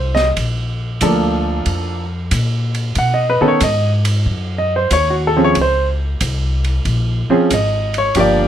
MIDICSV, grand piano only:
0, 0, Header, 1, 2, 480
1, 0, Start_track
1, 0, Tempo, 650054
1, 267, Time_signature, 4, 2, 24, 8
1, 6260, End_track
2, 0, Start_track
2, 0, Title_t, "Grand piano"
2, 0, Program_c, 0, 0
2, 0, Note_on_c, 0, 72, 69
2, 106, Note_off_c, 0, 72, 0
2, 108, Note_on_c, 0, 75, 100
2, 202, Note_off_c, 0, 75, 0
2, 754, Note_on_c, 0, 62, 58
2, 755, Note_on_c, 0, 53, 64
2, 758, Note_on_c, 0, 69, 70
2, 760, Note_on_c, 0, 58, 60
2, 1490, Note_off_c, 0, 53, 0
2, 1490, Note_off_c, 0, 62, 0
2, 1492, Note_off_c, 0, 69, 0
2, 1493, Note_off_c, 0, 58, 0
2, 2204, Note_on_c, 0, 78, 83
2, 2318, Note_on_c, 0, 75, 79
2, 2353, Note_off_c, 0, 78, 0
2, 2434, Note_on_c, 0, 71, 85
2, 2490, Note_off_c, 0, 75, 0
2, 2517, Note_on_c, 0, 51, 75
2, 2522, Note_on_c, 0, 59, 63
2, 2522, Note_on_c, 0, 61, 66
2, 2524, Note_on_c, 0, 69, 78
2, 2547, Note_off_c, 0, 71, 0
2, 2569, Note_on_c, 0, 73, 89
2, 2654, Note_off_c, 0, 51, 0
2, 2654, Note_off_c, 0, 73, 0
2, 2656, Note_off_c, 0, 59, 0
2, 2656, Note_off_c, 0, 61, 0
2, 2657, Note_off_c, 0, 69, 0
2, 2684, Note_on_c, 0, 75, 88
2, 2873, Note_off_c, 0, 75, 0
2, 3385, Note_on_c, 0, 75, 84
2, 3502, Note_off_c, 0, 75, 0
2, 3516, Note_on_c, 0, 72, 76
2, 3607, Note_off_c, 0, 72, 0
2, 3638, Note_on_c, 0, 73, 91
2, 3769, Note_on_c, 0, 66, 59
2, 3790, Note_off_c, 0, 73, 0
2, 3893, Note_on_c, 0, 69, 84
2, 3936, Note_off_c, 0, 66, 0
2, 3960, Note_on_c, 0, 61, 54
2, 3961, Note_on_c, 0, 53, 63
2, 3962, Note_on_c, 0, 60, 58
2, 3967, Note_on_c, 0, 68, 67
2, 3996, Note_off_c, 0, 69, 0
2, 4020, Note_on_c, 0, 73, 96
2, 4095, Note_off_c, 0, 61, 0
2, 4096, Note_off_c, 0, 53, 0
2, 4096, Note_off_c, 0, 60, 0
2, 4099, Note_off_c, 0, 68, 0
2, 4099, Note_off_c, 0, 73, 0
2, 4146, Note_on_c, 0, 72, 92
2, 4329, Note_off_c, 0, 72, 0
2, 5390, Note_on_c, 0, 60, 66
2, 5392, Note_on_c, 0, 53, 73
2, 5394, Note_on_c, 0, 61, 68
2, 5396, Note_on_c, 0, 68, 83
2, 5530, Note_off_c, 0, 60, 0
2, 5531, Note_off_c, 0, 53, 0
2, 5532, Note_off_c, 0, 61, 0
2, 5533, Note_off_c, 0, 68, 0
2, 5565, Note_on_c, 0, 75, 85
2, 5871, Note_off_c, 0, 75, 0
2, 5893, Note_on_c, 0, 73, 87
2, 6022, Note_on_c, 0, 53, 67
2, 6029, Note_on_c, 0, 67, 77
2, 6030, Note_on_c, 0, 58, 63
2, 6030, Note_on_c, 0, 62, 62
2, 6033, Note_off_c, 0, 73, 0
2, 6053, Note_on_c, 0, 74, 93
2, 6260, Note_off_c, 0, 53, 0
2, 6260, Note_off_c, 0, 58, 0
2, 6260, Note_off_c, 0, 62, 0
2, 6260, Note_off_c, 0, 67, 0
2, 6260, Note_off_c, 0, 74, 0
2, 6260, End_track
0, 0, End_of_file